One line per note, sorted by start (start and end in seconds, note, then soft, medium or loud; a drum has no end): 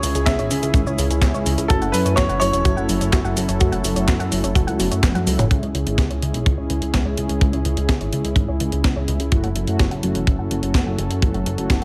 0.00 0.14 C#2 loud
0.00 0.15 C#3 loud
0.00 5.47 C#4 medium
0.00 5.47 E4 medium
0.00 1.66 G#4 loud
0.00 0.28 C#5 loud
0.00 open hi-hat loud
0.00 cabasa medium
0.15 0.26 C#2 medium
0.15 0.32 G#3 loud
0.15 0.32 C#4 medium
0.15 0.32 E4 medium
0.15 0.32 G#4 loud
0.15 0.20 G#4 medium
0.15 closed hi-hat medium
0.15 cabasa soft
0.26 0.37 C#2 loud
0.26 0.32 C#4 loud
0.26 1.41 E5 loud
0.26 kick loud
0.26 snare loud
0.26 clap medium
0.26 closed hi-hat medium
0.26 cabasa soft
0.39 0.49 G#1 medium
0.39 0.50 C#5 loud
0.39 closed hi-hat soft
0.39 cabasa soft
0.51 0.61 C#2 medium
0.51 0.62 C#3 loud
0.51 0.67 G#3 medium
0.51 0.67 C#4 medium
0.51 0.67 E4 medium
0.51 0.67 G#4 loud
0.51 open hi-hat loud
0.51 cabasa medium
0.63 0.73 C#2 medium
0.63 0.68 G#4 medium
0.63 closed hi-hat medium
0.63 cabasa soft
0.74 0.85 G#1 loud
0.74 0.80 C#4 loud
0.74 kick loud
0.74 closed hi-hat medium
0.74 cabasa soft
0.86 0.97 C#2 medium
0.86 1.08 G#3 medium
0.86 1.08 C#4 medium
0.86 1.08 E4 medium
0.86 1.08 G#4 medium
0.86 0.98 C#5 loud
0.86 cabasa soft
0.98 1.09 C#2 loud
0.98 1.10 C#3 loud
0.98 open hi-hat loud
0.98 cabasa medium
1.10 1.21 C#2 medium
1.10 1.27 G#3 medium
1.10 1.27 C#4 medium
1.10 1.27 E4 medium
1.10 1.27 G#4 medium
1.10 1.16 G#4 medium
1.10 closed hi-hat medium
1.10 cabasa soft
1.21 1.32 C#2 loud
1.21 1.27 C#4 loud
1.21 kick loud
1.21 snare loud
1.21 clap medium
1.21 closed hi-hat medium
1.21 cabasa soft
1.34 1.45 C#2 medium
1.34 1.51 G#3 medium
1.34 1.51 C#4 medium
1.34 1.51 E4 medium
1.34 1.51 G#4 medium
1.34 1.46 C#5 loud
1.34 cabasa soft
1.46 1.57 C#2 medium
1.46 1.57 C#3 loud
1.46 open hi-hat loud
1.46 cabasa medium
1.58 1.68 C#2 medium
1.58 1.63 G#4 medium
1.58 closed hi-hat medium
1.58 cabasa soft
1.68 1.81 F#1 loud
1.68 5.47 F#3 medium
1.68 1.86 A3 loud
1.68 1.86 C#4 medium
1.68 1.86 E4 medium
1.68 1.75 F#4 loud
1.68 1.86 F#4 loud
1.68 1.94 A4 loud
1.68 5.47 A4 loud
1.68 kick loud
1.68 closed hi-hat medium
1.68 cabasa soft
1.82 1.92 F#1 medium
1.82 1.93 F#5 loud
1.82 closed hi-hat soft
1.82 cabasa soft
1.92 2.04 F#1 medium
1.92 2.05 F#3 loud
1.92 2.17 B4 loud
1.92 open hi-hat loud
1.92 cabasa medium
2.05 2.16 F#2 medium
2.05 2.22 A3 loud
2.05 2.22 C#4 medium
2.05 2.22 E4 medium
2.05 2.22 F#4 loud
2.05 2.11 C#5 medium
2.05 closed hi-hat medium
2.05 cabasa soft
2.16 2.28 F#1 loud
2.16 2.22 F#4 loud
2.16 2.38 C#5 loud
2.16 kick loud
2.16 snare loud
2.16 clap loud
2.16 closed hi-hat medium
2.16 cabasa soft
2.29 2.40 F#1 medium
2.29 2.41 F#5 loud
2.29 closed hi-hat soft
2.29 cabasa soft
2.40 2.52 F#1 medium
2.40 2.52 F#3 loud
2.40 2.58 A3 medium
2.40 2.58 C#4 medium
2.40 2.58 E4 medium
2.40 2.58 F#4 loud
2.40 4.98 C#5 loud
2.40 open hi-hat loud
2.40 cabasa medium
2.53 2.64 E1 medium
2.53 2.58 C#5 medium
2.53 closed hi-hat medium
2.53 cabasa soft
2.65 2.76 F#1 loud
2.65 2.70 F#4 loud
2.65 kick loud
2.65 closed hi-hat medium
2.65 cabasa soft
2.77 2.88 F#1 medium
2.77 2.98 A3 medium
2.77 2.98 C#4 medium
2.77 2.98 E4 medium
2.77 2.98 F#4 medium
2.77 2.88 F#5 loud
2.77 cabasa soft
2.89 2.99 F#1 medium
2.89 3.00 F#3 loud
2.89 open hi-hat loud
2.89 cabasa medium
3.01 3.11 F#1 medium
3.01 3.17 A3 medium
3.01 3.17 C#4 medium
3.01 3.17 E4 medium
3.01 3.17 F#4 medium
3.01 3.06 C#5 medium
3.01 closed hi-hat medium
3.01 cabasa soft
3.13 3.23 F#1 loud
3.13 3.18 F#4 loud
3.13 kick loud
3.13 snare loud
3.13 clap loud
3.13 closed hi-hat medium
3.13 cabasa soft
3.24 3.35 F#1 medium
3.24 3.41 A3 medium
3.24 3.41 C#4 medium
3.24 3.41 E4 medium
3.24 3.41 F#4 medium
3.24 3.36 F#5 loud
3.24 cabasa soft
3.36 3.47 F#1 loud
3.36 3.48 F#3 loud
3.36 open hi-hat loud
3.36 cabasa medium
3.48 3.59 F#1 medium
3.48 3.54 C#5 medium
3.48 closed hi-hat medium
3.48 cabasa soft
3.60 3.71 F#1 loud
3.60 3.77 A3 loud
3.60 3.77 C#4 medium
3.60 3.77 E4 medium
3.60 3.77 F#4 loud
3.60 3.65 F#4 loud
3.60 kick loud
3.60 closed hi-hat medium
3.60 cabasa soft
3.72 3.83 F#1 medium
3.72 3.83 F#5 loud
3.72 closed hi-hat soft
3.72 cabasa soft
3.84 3.95 F#1 medium
3.84 3.95 F#3 loud
3.84 open hi-hat loud
3.84 cabasa medium
3.96 4.07 F#1 medium
3.96 4.12 A3 loud
3.96 4.12 C#4 medium
3.96 4.13 E4 medium
3.96 4.12 F#4 loud
3.96 4.01 C#5 medium
3.96 closed hi-hat medium
3.96 cabasa soft
4.08 4.18 F#1 loud
4.08 4.13 F#4 loud
4.08 kick loud
4.08 snare loud
4.08 clap loud
4.08 closed hi-hat medium
4.08 cabasa soft
4.20 4.30 F#2 medium
4.20 4.31 F#5 loud
4.20 closed hi-hat soft
4.20 cabasa soft
4.32 4.42 F#1 medium
4.32 4.43 F#3 loud
4.32 4.48 A3 medium
4.32 4.48 C#4 medium
4.32 4.48 E4 medium
4.32 4.48 F#4 loud
4.32 open hi-hat loud
4.32 cabasa medium
4.44 4.54 F#1 medium
4.44 4.49 C#5 medium
4.44 closed hi-hat medium
4.44 cabasa soft
4.55 4.66 F#1 loud
4.55 4.61 F#4 loud
4.55 kick loud
4.55 closed hi-hat medium
4.55 cabasa soft
4.67 4.78 C#2 medium
4.67 4.89 A3 medium
4.67 4.89 C#4 medium
4.67 4.89 E4 medium
4.67 4.89 F#4 medium
4.67 4.79 F#5 loud
4.67 closed hi-hat soft
4.67 cabasa soft
4.79 4.90 F#1 medium
4.79 4.91 F#3 loud
4.79 snare soft
4.79 open hi-hat loud
4.79 cabasa medium
4.91 5.02 F#2 medium
4.91 5.24 A3 medium
4.91 5.24 C#4 medium
4.91 5.24 E4 medium
4.91 5.24 F#4 medium
4.91 4.96 C#5 medium
4.91 closed hi-hat medium
4.91 cabasa soft
5.03 5.14 F#1 loud
5.03 5.08 F#4 loud
5.03 kick loud
5.03 snare loud
5.03 clap loud
5.03 closed hi-hat medium
5.03 high tom medium
5.03 cabasa soft
5.15 5.26 F#2 medium
5.15 5.26 F#5 loud
5.15 closed hi-hat soft
5.15 high tom medium
5.15 cabasa soft
5.27 5.37 C#2 medium
5.27 5.38 F#3 loud
5.27 5.43 A3 medium
5.27 5.43 C#4 medium
5.27 5.44 E4 medium
5.27 5.43 F#4 loud
5.27 open hi-hat loud
5.27 cabasa medium
5.39 5.49 F#1 medium
5.39 5.44 C#5 medium
5.39 closed hi-hat medium
5.39 mid tom medium
5.39 cabasa soft
5.51 5.61 C#2 loud
5.51 5.67 G#3 medium
5.51 5.56 C#4 loud
5.51 5.67 C#4 medium
5.51 9.28 C#4 medium
5.51 5.67 E4 medium
5.51 11.18 E4 medium
5.51 5.67 G#4 loud
5.51 9.28 G#4 medium
5.51 kick loud
5.51 closed hi-hat medium
5.62 5.73 C#2 medium
5.62 5.74 C#5 medium
5.62 closed hi-hat soft
5.74 5.85 C#2 medium
5.74 5.86 C#3 medium
5.74 closed hi-hat medium
5.86 5.97 G#1 medium
5.86 6.03 G#3 loud
5.86 6.03 C#4 medium
5.86 6.03 E4 medium
5.86 5.92 G#4 medium
5.86 6.03 G#4 loud
5.86 closed hi-hat soft
5.98 6.09 C#2 loud
5.98 6.04 C#4 loud
5.98 kick loud
5.98 snare loud
5.98 closed hi-hat medium
6.10 6.21 C#2 medium
6.10 6.22 C#5 loud
6.10 closed hi-hat soft
6.22 6.33 C#2 medium
6.22 6.33 C#3 loud
6.22 6.39 G#3 medium
6.22 6.39 C#4 medium
6.22 6.39 E4 medium
6.22 6.39 G#4 loud
6.22 closed hi-hat medium
6.34 6.45 B1 medium
6.34 6.39 G#4 medium
6.34 closed hi-hat medium
6.46 6.57 C#2 loud
6.46 6.51 C#4 loud
6.46 kick loud
6.46 closed hi-hat medium
6.58 6.68 C#2 medium
6.58 6.79 G#3 medium
6.58 6.79 C#4 medium
6.58 6.79 E4 medium
6.58 6.79 G#4 medium
6.58 6.69 C#5 loud
6.70 6.80 C#2 medium
6.70 6.81 C#3 loud
6.70 closed hi-hat medium
6.81 6.92 C#2 medium
6.81 6.98 G#3 medium
6.81 6.98 C#4 medium
6.81 6.98 E4 medium
6.81 6.87 G#4 medium
6.81 6.98 G#4 medium
6.81 closed hi-hat soft
6.93 7.04 C#2 loud
6.93 6.99 C#4 loud
6.93 kick medium
6.93 snare loud
6.93 closed hi-hat medium
7.05 7.16 C#2 medium
7.05 7.22 G#3 medium
7.05 7.22 C#4 medium
7.05 7.22 E4 medium
7.05 7.22 G#4 medium
7.05 7.17 C#5 loud
7.17 7.28 C#2 medium
7.17 7.29 C#3 loud
7.17 closed hi-hat medium
7.29 7.40 C#2 medium
7.29 7.34 G#4 medium
7.29 closed hi-hat medium
7.41 7.52 C#2 loud
7.41 7.58 G#3 medium
7.41 7.46 C#4 loud
7.41 7.58 C#4 medium
7.41 7.58 E4 medium
7.41 7.58 G#4 loud
7.41 kick loud
7.41 closed hi-hat medium
7.53 7.64 C#2 medium
7.53 7.64 C#5 loud
7.53 closed hi-hat soft
7.65 7.76 C#2 medium
7.65 7.76 C#3 medium
7.65 closed hi-hat medium
7.77 7.88 C#2 medium
7.77 7.94 G#3 loud
7.77 7.93 C#4 medium
7.77 7.93 E4 medium
7.77 7.82 G#4 medium
7.77 7.93 G#4 loud
7.77 closed hi-hat medium
7.89 7.99 C#2 loud
7.89 7.94 C#4 loud
7.89 kick loud
7.89 snare loud
7.89 closed hi-hat medium
8.01 8.11 G#1 medium
8.01 8.12 C#5 loud
8.01 closed hi-hat soft
8.13 8.23 C#2 medium
8.13 8.24 C#3 loud
8.13 8.29 G#3 medium
8.13 8.29 C#4 medium
8.13 8.29 E4 medium
8.13 8.29 G#4 loud
8.13 closed hi-hat medium
8.25 8.35 C#2 medium
8.25 8.30 G#4 medium
8.25 closed hi-hat medium
8.36 8.47 G#1 loud
8.36 8.42 C#4 loud
8.36 kick loud
8.36 closed hi-hat medium
8.48 8.59 C#2 medium
8.48 8.70 G#3 medium
8.48 8.70 C#4 medium
8.48 8.70 E4 medium
8.48 8.70 G#4 medium
8.48 8.60 C#5 loud
8.60 8.71 C#2 medium
8.60 8.72 C#3 loud
8.60 closed hi-hat medium
8.72 8.83 C#2 medium
8.72 8.89 G#3 medium
8.72 8.89 C#4 medium
8.72 8.89 E4 medium
8.72 8.89 G#4 medium
8.72 8.77 G#4 medium
8.72 closed hi-hat soft
8.84 8.95 C#2 loud
8.84 8.89 C#4 loud
8.84 kick loud
8.84 snare loud
8.84 closed hi-hat medium
8.96 9.07 C#2 medium
8.96 9.13 G#3 medium
8.96 9.13 C#4 medium
8.96 9.13 E4 medium
8.96 9.13 G#4 medium
8.96 9.08 C#5 loud
9.08 9.19 C#2 medium
9.08 9.19 C#3 loud
9.08 closed hi-hat medium
9.20 9.31 C#2 medium
9.20 9.25 G#4 medium
9.20 closed hi-hat soft
9.32 9.42 F#1 loud
9.32 11.84 F#3 medium
9.32 9.48 A3 medium
9.32 9.48 C#4 medium
9.32 11.84 C#4 medium
9.32 9.48 E4 medium
9.32 9.37 F#4 loud
9.32 9.48 F#4 loud
9.32 11.84 A4 medium
9.32 kick loud
9.32 closed hi-hat medium
9.44 9.54 F#1 medium
9.44 9.55 F#5 loud
9.44 closed hi-hat soft
9.56 9.66 F#1 medium
9.56 9.67 F#3 loud
9.56 closed hi-hat medium
9.67 9.78 F#2 medium
9.67 9.84 A3 loud
9.67 9.84 C#4 medium
9.67 9.84 E4 medium
9.67 9.84 F#4 loud
9.67 9.73 C#5 medium
9.67 closed hi-hat soft
9.79 9.90 F#1 loud
9.79 9.84 F#4 loud
9.79 kick loud
9.79 snare loud
9.79 closed hi-hat medium
9.91 10.02 F#1 medium
9.91 10.03 F#5 loud
9.91 closed hi-hat soft
10.03 10.14 F#1 medium
10.03 10.15 F#3 loud
10.03 10.20 A3 medium
10.03 10.20 C#4 medium
10.03 10.20 E4 medium
10.03 10.20 F#4 loud
10.03 closed hi-hat medium
10.15 10.26 E1 medium
10.15 10.20 C#5 medium
10.15 closed hi-hat medium
10.27 10.38 F#1 loud
10.27 10.32 F#4 loud
10.27 kick loud
10.27 closed hi-hat medium
10.39 10.49 F#1 medium
10.39 10.60 A3 medium
10.39 10.60 C#4 medium
10.39 10.60 E4 medium
10.39 10.60 F#4 medium
10.39 10.50 F#5 loud
10.51 10.61 F#1 loud
10.51 10.62 F#3 loud
10.51 closed hi-hat medium
10.63 10.73 F#1 medium
10.63 10.79 A3 medium
10.63 10.79 C#4 medium
10.63 10.79 E4 medium
10.63 10.79 F#4 medium
10.63 10.68 C#5 medium
10.63 closed hi-hat soft
10.74 10.85 F#1 loud
10.74 10.80 F#4 loud
10.74 kick loud
10.74 snare loud
10.74 closed hi-hat medium
10.86 10.97 F#1 medium
10.86 11.03 A3 medium
10.86 11.03 C#4 medium
10.86 11.03 E4 medium
10.86 11.03 F#4 medium
10.86 10.98 F#5 loud
10.98 11.09 F#1 medium
10.98 11.10 F#3 loud
10.98 closed hi-hat medium
11.10 11.21 F#1 medium
11.10 11.15 C#5 medium
11.10 closed hi-hat soft
11.22 11.33 F#1 loud
11.22 11.39 A3 loud
11.22 11.39 C#4 medium
11.22 11.39 E4 medium
11.22 11.27 F#4 loud
11.22 11.39 F#4 loud
11.22 11.84 F#4 medium
11.22 kick loud
11.22 closed hi-hat medium
11.34 11.45 F#1 medium
11.34 11.45 F#5 loud
11.34 closed hi-hat soft
11.46 11.57 F#1 medium
11.46 11.57 F#3 medium
11.46 closed hi-hat medium
11.58 11.69 F#1 medium
11.58 11.74 A3 loud
11.58 11.74 C#4 medium
11.58 11.74 E4 medium
11.58 11.74 F#4 loud
11.58 11.63 C#5 medium
11.58 closed hi-hat soft
11.70 11.80 F#1 loud
11.70 11.75 F#4 loud
11.70 kick loud
11.70 snare loud
11.70 closed hi-hat medium